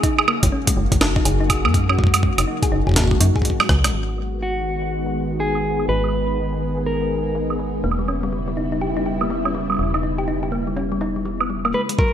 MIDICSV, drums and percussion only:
0, 0, Header, 1, 2, 480
1, 0, Start_track
1, 0, Key_signature, 5, "minor"
1, 0, Tempo, 487805
1, 34, Time_signature, 4, 2, 24, 8
1, 11938, End_track
2, 0, Start_track
2, 0, Title_t, "Drums"
2, 34, Note_on_c, 9, 36, 97
2, 35, Note_on_c, 9, 42, 53
2, 133, Note_off_c, 9, 36, 0
2, 133, Note_off_c, 9, 42, 0
2, 182, Note_on_c, 9, 76, 82
2, 274, Note_off_c, 9, 76, 0
2, 274, Note_on_c, 9, 76, 77
2, 372, Note_off_c, 9, 76, 0
2, 422, Note_on_c, 9, 42, 75
2, 423, Note_on_c, 9, 36, 109
2, 521, Note_off_c, 9, 42, 0
2, 522, Note_off_c, 9, 36, 0
2, 663, Note_on_c, 9, 36, 101
2, 663, Note_on_c, 9, 42, 90
2, 761, Note_off_c, 9, 42, 0
2, 762, Note_off_c, 9, 36, 0
2, 903, Note_on_c, 9, 36, 109
2, 903, Note_on_c, 9, 42, 51
2, 995, Note_on_c, 9, 38, 113
2, 995, Note_on_c, 9, 76, 37
2, 1002, Note_off_c, 9, 36, 0
2, 1002, Note_off_c, 9, 42, 0
2, 1093, Note_off_c, 9, 38, 0
2, 1093, Note_off_c, 9, 76, 0
2, 1143, Note_on_c, 9, 36, 102
2, 1234, Note_on_c, 9, 42, 74
2, 1242, Note_off_c, 9, 36, 0
2, 1332, Note_off_c, 9, 42, 0
2, 1474, Note_on_c, 9, 36, 118
2, 1475, Note_on_c, 9, 42, 92
2, 1475, Note_on_c, 9, 76, 82
2, 1573, Note_off_c, 9, 36, 0
2, 1573, Note_off_c, 9, 42, 0
2, 1573, Note_off_c, 9, 76, 0
2, 1624, Note_on_c, 9, 76, 80
2, 1714, Note_on_c, 9, 36, 99
2, 1715, Note_on_c, 9, 42, 52
2, 1722, Note_off_c, 9, 76, 0
2, 1813, Note_off_c, 9, 36, 0
2, 1814, Note_off_c, 9, 42, 0
2, 1864, Note_on_c, 9, 76, 64
2, 1954, Note_on_c, 9, 36, 107
2, 1962, Note_off_c, 9, 76, 0
2, 2004, Note_off_c, 9, 36, 0
2, 2004, Note_on_c, 9, 36, 89
2, 2035, Note_off_c, 9, 36, 0
2, 2035, Note_on_c, 9, 36, 72
2, 2104, Note_on_c, 9, 42, 80
2, 2104, Note_on_c, 9, 76, 83
2, 2133, Note_off_c, 9, 36, 0
2, 2195, Note_on_c, 9, 36, 102
2, 2202, Note_off_c, 9, 42, 0
2, 2202, Note_off_c, 9, 76, 0
2, 2293, Note_off_c, 9, 36, 0
2, 2344, Note_on_c, 9, 42, 93
2, 2344, Note_on_c, 9, 76, 81
2, 2443, Note_off_c, 9, 42, 0
2, 2443, Note_off_c, 9, 76, 0
2, 2583, Note_on_c, 9, 36, 112
2, 2584, Note_on_c, 9, 42, 54
2, 2682, Note_off_c, 9, 36, 0
2, 2683, Note_off_c, 9, 42, 0
2, 2823, Note_on_c, 9, 36, 45
2, 2846, Note_off_c, 9, 36, 0
2, 2846, Note_on_c, 9, 36, 54
2, 2869, Note_off_c, 9, 36, 0
2, 2869, Note_on_c, 9, 36, 59
2, 2892, Note_off_c, 9, 36, 0
2, 2892, Note_on_c, 9, 36, 66
2, 2914, Note_on_c, 9, 38, 112
2, 2914, Note_on_c, 9, 42, 78
2, 2915, Note_off_c, 9, 36, 0
2, 2915, Note_on_c, 9, 36, 69
2, 2952, Note_off_c, 9, 36, 0
2, 2952, Note_on_c, 9, 36, 77
2, 2989, Note_off_c, 9, 36, 0
2, 2989, Note_on_c, 9, 36, 84
2, 3013, Note_off_c, 9, 38, 0
2, 3013, Note_off_c, 9, 42, 0
2, 3026, Note_off_c, 9, 36, 0
2, 3026, Note_on_c, 9, 36, 91
2, 3063, Note_off_c, 9, 36, 0
2, 3063, Note_on_c, 9, 36, 114
2, 3154, Note_on_c, 9, 42, 95
2, 3161, Note_off_c, 9, 36, 0
2, 3253, Note_off_c, 9, 42, 0
2, 3303, Note_on_c, 9, 36, 93
2, 3364, Note_off_c, 9, 36, 0
2, 3364, Note_on_c, 9, 36, 76
2, 3394, Note_on_c, 9, 42, 53
2, 3444, Note_off_c, 9, 36, 0
2, 3444, Note_on_c, 9, 36, 66
2, 3493, Note_off_c, 9, 42, 0
2, 3542, Note_off_c, 9, 36, 0
2, 3543, Note_on_c, 9, 37, 53
2, 3543, Note_on_c, 9, 76, 84
2, 3634, Note_off_c, 9, 37, 0
2, 3634, Note_on_c, 9, 36, 108
2, 3634, Note_on_c, 9, 37, 80
2, 3641, Note_off_c, 9, 76, 0
2, 3732, Note_off_c, 9, 36, 0
2, 3732, Note_off_c, 9, 37, 0
2, 3782, Note_on_c, 9, 37, 81
2, 3782, Note_on_c, 9, 42, 83
2, 3782, Note_on_c, 9, 76, 67
2, 3873, Note_off_c, 9, 42, 0
2, 3873, Note_on_c, 9, 42, 77
2, 3881, Note_off_c, 9, 37, 0
2, 3881, Note_off_c, 9, 76, 0
2, 3971, Note_off_c, 9, 42, 0
2, 4022, Note_on_c, 9, 76, 73
2, 4113, Note_off_c, 9, 76, 0
2, 4113, Note_on_c, 9, 42, 85
2, 4113, Note_on_c, 9, 76, 70
2, 4211, Note_off_c, 9, 42, 0
2, 4211, Note_off_c, 9, 76, 0
2, 4353, Note_on_c, 9, 42, 50
2, 4451, Note_off_c, 9, 42, 0
2, 4742, Note_on_c, 9, 42, 73
2, 4840, Note_off_c, 9, 42, 0
2, 4982, Note_on_c, 9, 42, 90
2, 5080, Note_off_c, 9, 42, 0
2, 5222, Note_on_c, 9, 42, 52
2, 5320, Note_off_c, 9, 42, 0
2, 5461, Note_on_c, 9, 76, 75
2, 5553, Note_on_c, 9, 42, 80
2, 5560, Note_off_c, 9, 76, 0
2, 5651, Note_off_c, 9, 42, 0
2, 5701, Note_on_c, 9, 76, 59
2, 5792, Note_on_c, 9, 42, 90
2, 5799, Note_off_c, 9, 76, 0
2, 5890, Note_off_c, 9, 42, 0
2, 5941, Note_on_c, 9, 76, 74
2, 5986, Note_off_c, 9, 76, 0
2, 5986, Note_on_c, 9, 76, 73
2, 6032, Note_on_c, 9, 42, 49
2, 6085, Note_off_c, 9, 76, 0
2, 6131, Note_off_c, 9, 42, 0
2, 6422, Note_on_c, 9, 42, 76
2, 6520, Note_off_c, 9, 42, 0
2, 6662, Note_on_c, 9, 42, 89
2, 6761, Note_off_c, 9, 42, 0
2, 6902, Note_on_c, 9, 42, 50
2, 7000, Note_off_c, 9, 42, 0
2, 7232, Note_on_c, 9, 42, 76
2, 7331, Note_off_c, 9, 42, 0
2, 7382, Note_on_c, 9, 76, 73
2, 7472, Note_on_c, 9, 42, 90
2, 7480, Note_off_c, 9, 76, 0
2, 7571, Note_off_c, 9, 42, 0
2, 7713, Note_on_c, 9, 42, 53
2, 7788, Note_on_c, 9, 76, 74
2, 7811, Note_off_c, 9, 42, 0
2, 7886, Note_off_c, 9, 76, 0
2, 7952, Note_on_c, 9, 76, 67
2, 8051, Note_off_c, 9, 76, 0
2, 8102, Note_on_c, 9, 42, 72
2, 8201, Note_off_c, 9, 42, 0
2, 8342, Note_on_c, 9, 42, 91
2, 8440, Note_off_c, 9, 42, 0
2, 8582, Note_on_c, 9, 42, 50
2, 8681, Note_off_c, 9, 42, 0
2, 8913, Note_on_c, 9, 42, 73
2, 9012, Note_off_c, 9, 42, 0
2, 9062, Note_on_c, 9, 76, 74
2, 9153, Note_on_c, 9, 42, 90
2, 9161, Note_off_c, 9, 76, 0
2, 9252, Note_off_c, 9, 42, 0
2, 9302, Note_on_c, 9, 76, 73
2, 9393, Note_on_c, 9, 42, 53
2, 9400, Note_off_c, 9, 76, 0
2, 9491, Note_off_c, 9, 42, 0
2, 9542, Note_on_c, 9, 76, 53
2, 9566, Note_off_c, 9, 76, 0
2, 9566, Note_on_c, 9, 76, 45
2, 9587, Note_off_c, 9, 76, 0
2, 9587, Note_on_c, 9, 76, 35
2, 9611, Note_off_c, 9, 76, 0
2, 9611, Note_on_c, 9, 76, 29
2, 9671, Note_off_c, 9, 76, 0
2, 9671, Note_on_c, 9, 76, 20
2, 9709, Note_off_c, 9, 76, 0
2, 9709, Note_on_c, 9, 76, 17
2, 9746, Note_off_c, 9, 76, 0
2, 9746, Note_on_c, 9, 76, 13
2, 9782, Note_off_c, 9, 76, 0
2, 9782, Note_on_c, 9, 42, 74
2, 9782, Note_on_c, 9, 76, 71
2, 9881, Note_off_c, 9, 42, 0
2, 9881, Note_off_c, 9, 76, 0
2, 10022, Note_on_c, 9, 42, 81
2, 10121, Note_off_c, 9, 42, 0
2, 10263, Note_on_c, 9, 42, 51
2, 10361, Note_off_c, 9, 42, 0
2, 10594, Note_on_c, 9, 42, 70
2, 10693, Note_off_c, 9, 42, 0
2, 10833, Note_on_c, 9, 42, 83
2, 10932, Note_off_c, 9, 42, 0
2, 11073, Note_on_c, 9, 42, 50
2, 11172, Note_off_c, 9, 42, 0
2, 11222, Note_on_c, 9, 76, 70
2, 11321, Note_off_c, 9, 76, 0
2, 11462, Note_on_c, 9, 42, 75
2, 11462, Note_on_c, 9, 76, 57
2, 11561, Note_off_c, 9, 42, 0
2, 11561, Note_off_c, 9, 76, 0
2, 11703, Note_on_c, 9, 42, 38
2, 11794, Note_on_c, 9, 36, 116
2, 11801, Note_off_c, 9, 42, 0
2, 11892, Note_off_c, 9, 36, 0
2, 11938, End_track
0, 0, End_of_file